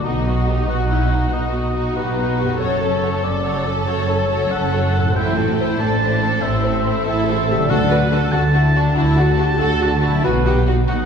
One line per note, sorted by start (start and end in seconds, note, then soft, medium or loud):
0.00 2.54 B2 soft
0.00 3.81 F#3 soft
0.00 2.50 F#4 soft
0.00 2.60 B4 soft
0.05 0.62 B1 medium
0.05 0.61 B2 medium
0.05 0.25 D#4 soft
0.05 0.27 D#4 medium
0.05 0.25 F#4 soft
0.05 0.68 D#5 medium
0.27 0.48 B3 soft
0.27 0.48 D#4 soft
0.27 0.47 F#4 medium
0.27 0.48 F#4 soft
0.46 0.69 D#4 soft
0.46 0.68 D#4 soft
0.46 0.70 F#4 soft
0.46 0.70 G4 medium
0.67 1.26 B1 medium
0.67 1.25 B2 medium
0.67 0.90 B3 soft
0.67 0.91 D#4 soft
0.67 0.90 F#4 medium
0.67 1.32 F#5 medium
0.88 1.09 D#4 soft
0.88 1.13 E4 medium
0.88 1.11 F#4 soft
0.92 1.11 D#4 soft
1.09 1.32 D#4 soft
1.09 1.34 D#4 medium
1.09 1.32 F#4 soft
1.13 1.34 B3 soft
1.32 1.90 B1 medium
1.32 1.90 B2 medium
1.32 1.54 D#4 soft
1.32 1.55 F#4 soft
1.32 1.97 F#4 medium
1.32 1.96 D#5 medium
1.52 1.76 B3 soft
1.52 1.75 D#4 soft
1.52 1.75 F#4 soft
1.73 1.94 D#4 soft
1.73 1.96 D#4 soft
1.73 1.96 F#4 soft
1.94 2.53 B1 medium
1.94 2.54 B2 medium
1.94 2.19 B3 medium
1.94 2.18 D#4 soft
1.94 2.17 F#4 soft
1.94 2.19 G4 medium
1.94 2.59 B4 medium
2.16 2.38 D#4 soft
2.16 2.40 D#4 medium
2.16 2.40 F#4 soft
2.16 2.40 F#4 medium
2.38 2.61 B3 soft
2.38 2.62 D#4 medium
2.38 2.60 F#4 medium
2.38 2.61 G4 medium
2.42 5.08 F#2 medium
2.47 5.01 A3 soft
2.51 5.13 F#4 soft
2.56 2.79 C#5 medium
2.56 5.15 C#6 soft
2.60 3.17 F#1 medium
2.60 3.17 F#2 medium
2.60 2.81 A3 medium
2.60 2.82 F#4 medium
2.60 5.12 A4 medium
2.60 3.25 C#5 medium
2.81 3.04 C#4 medium
2.81 3.03 A4 medium
2.81 3.04 A4 medium
3.01 3.25 A3 medium
3.01 3.24 F#4 soft
3.01 3.24 C#5 soft
3.22 3.80 F#1 medium
3.22 3.80 F#2 medium
3.22 3.45 C#4 medium
3.22 3.44 A4 medium
3.22 3.45 A4 medium
3.22 3.65 D5 medium
3.43 3.65 A3 soft
3.43 3.65 F#4 soft
3.43 3.64 C#5 medium
3.65 3.88 C#4 soft
3.65 3.87 A4 medium
3.65 3.88 A4 soft
3.86 4.45 F#1 medium
3.86 4.45 F#2 medium
3.86 4.09 A3 soft
3.86 4.09 F#4 medium
3.86 4.08 C#5 medium
3.86 4.53 C#5 medium
4.08 4.30 C#4 medium
4.08 4.30 A4 medium
4.28 4.51 A3 medium
4.28 4.51 F#4 medium
4.28 4.50 C#5 medium
4.51 5.08 F#1 medium
4.51 5.08 F#2 medium
4.51 4.74 C#4 medium
4.51 4.73 A4 medium
4.51 4.74 A4 medium
4.51 5.15 F#5 medium
4.72 4.95 A3 medium
4.72 4.95 F#4 medium
4.72 4.94 C#5 medium
4.94 7.62 A2 medium
4.94 5.16 C#4 medium
4.94 5.15 A4 medium
4.94 5.16 A4 medium
5.02 8.92 A3 soft
5.06 7.67 E4 medium
5.11 7.69 C5 medium
5.11 5.35 C5 medium
5.16 5.72 A1 medium
5.16 5.72 A2 medium
5.16 5.35 A3 medium
5.16 5.36 E4 medium
5.16 5.37 E4 medium
5.16 5.78 G5 medium
5.37 5.59 C4 medium
5.37 5.58 F#4 medium
5.37 5.58 A4 medium
5.58 5.79 A3 medium
5.58 5.79 E4 medium
5.58 5.80 E4 medium
5.58 5.80 C5 medium
5.79 6.35 A1 medium
5.79 6.35 A2 medium
5.79 6.01 C4 medium
5.79 6.42 D4 medium
5.79 6.01 A4 medium
5.79 6.44 A5 loud
6.00 6.22 A3 medium
6.00 6.22 E4 medium
6.00 6.20 C5 medium
6.21 6.44 C4 medium
6.21 6.42 A4 medium
6.42 6.99 A1 medium
6.42 6.99 A2 medium
6.42 6.64 A3 medium
6.42 7.07 C4 medium
6.42 6.64 E4 medium
6.42 6.64 C5 medium
6.42 7.05 E5 medium
6.63 6.85 C4 medium
6.63 6.85 A4 medium
6.83 7.05 A3 medium
6.83 7.05 E4 medium
6.83 7.04 C5 medium
7.05 7.63 A1 medium
7.05 7.63 A2 medium
7.05 7.29 C4 medium
7.05 7.28 E4 medium
7.05 7.27 A4 medium
7.05 7.72 E5 loud
7.26 7.50 A3 medium
7.26 7.49 E4 medium
7.26 7.49 A4 medium
7.26 7.48 C5 medium
7.46 7.70 C4 medium
7.46 7.69 A4 medium
7.50 10.18 D3 medium
7.50 7.58 G4 medium
7.56 10.11 F#3 medium
7.61 10.15 F#4 medium
7.65 7.77 D4 medium
7.65 7.76 F#4 medium
7.65 7.77 F#4 medium
7.65 10.24 D5 medium
7.70 8.26 D2 medium
7.70 8.29 D3 medium
7.70 8.26 D3 medium
7.70 7.91 A4 medium
7.70 8.34 F#5 loud
7.89 7.97 D4 medium
7.89 7.97 F#4 medium
7.89 7.98 F#4 medium
7.89 8.12 B4 medium
8.11 8.19 D4 medium
8.11 8.19 F#4 medium
8.11 8.20 F#4 medium
8.11 8.34 A4 medium
8.32 8.90 D2 medium
8.32 8.90 D3 medium
8.32 8.41 D4 medium
8.32 8.40 F#4 medium
8.32 8.41 F#4 medium
8.32 8.42 F#4 medium
8.32 8.96 A5 loud
8.53 8.62 D4 medium
8.53 8.76 E4 medium
8.53 8.61 F#4 medium
8.53 8.62 F#4 medium
8.76 8.84 D4 medium
8.76 8.97 D4 medium
8.76 8.84 F#4 medium
8.95 9.54 D2 medium
8.95 9.54 D3 medium
8.95 9.04 D4 medium
8.95 9.19 E4 medium
8.95 9.03 F#4 medium
8.95 9.05 F#4 medium
8.95 10.22 A5 loud
9.16 9.25 D4 medium
9.16 9.24 F#4 medium
9.16 9.39 F#4 medium
9.16 9.27 F#4 medium
9.37 9.46 D4 medium
9.37 9.45 F#4 medium
9.37 9.46 F#4 medium
9.37 9.61 G4 medium
9.59 10.18 D2 medium
9.59 10.18 D3 medium
9.59 9.67 D4 medium
9.59 9.67 F#4 medium
9.59 9.68 F#4 medium
9.59 9.81 A4 medium
9.81 9.90 D4 medium
9.81 9.89 F#4 medium
9.81 9.90 F#4 medium
9.81 10.04 F#4 medium
10.01 10.12 D4 medium
10.01 10.25 E4 medium
10.01 10.09 F#4 medium
10.01 10.11 F#4 medium
10.07 11.05 B2 medium
10.12 11.05 F#3 medium
10.16 11.05 F#4 medium
10.21 10.32 D#4 medium
10.21 10.32 F#4 medium
10.21 10.65 B4 loud
10.21 11.05 D#5 medium
10.25 10.82 B1 medium
10.25 10.82 B2 medium
10.25 10.46 F#4 medium
10.45 10.53 D#4 medium
10.45 10.53 F#4 medium
10.45 10.67 G4 medium
10.66 10.76 D#4 medium
10.66 10.74 F#4 medium
10.66 10.75 F#4 medium
10.66 10.76 F#4 medium
10.88 11.05 B1 medium
10.88 11.05 B2 medium
10.88 10.97 D#4 medium
10.88 11.05 D#4 medium
10.88 10.96 F#4 medium
10.88 11.05 F#5 loud